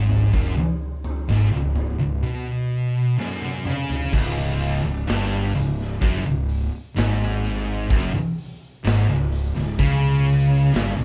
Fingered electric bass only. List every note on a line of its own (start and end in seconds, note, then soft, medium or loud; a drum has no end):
0.00 0.30 G#1 medium
0.34 0.56 F#1 medium
0.58 muted fingered electric bass stroke soft
1.29 1.51 G#1 medium
1.53 1.97 C#1 medium
2.01 2.22 C#1 medium
4.13 4.80 C#1 loud
4.85 5.06 C#1 medium
5.09 5.52 G1 medium
5.56 5.99 C#1 medium
6.02 6.24 F#1 loud
6.26 6.70 C#1 medium
6.97 7.87 G#1 medium
7.91 8.12 F#1 loud
8.16 muted fingered electric bass stroke soft
8.85 9.07 G#1 medium
9.09 9.53 C#1 medium
9.57 9.78 C#1 medium
9.79 10.70 C#2 medium
10.74 10.96 G1 medium
10.98 11.04 C#1 medium